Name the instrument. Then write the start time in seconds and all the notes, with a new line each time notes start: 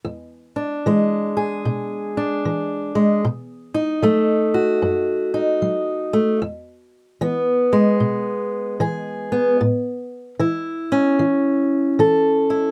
steel-string acoustic guitar
0.05 E2
0.56 D4
0.86 E3 G#3
1.37 G#4
1.65 B2
2.17 D4
2.45 E3
2.95 G#3
3.25 B2
3.74 D#4
4.02 F#3 A3
4.54 F#4
4.82 F#2
5.34 D#4
5.62 F#3
6.13 A3
6.42 E2
7.21 E3 B3
7.73 G#3
8.00 B2
8.80 E3 G#4
9.32 B3
9.61 A2
10.39 E3 E4
10.92 C#4
11.19 E3
11.99 E3 A4
12.50 E4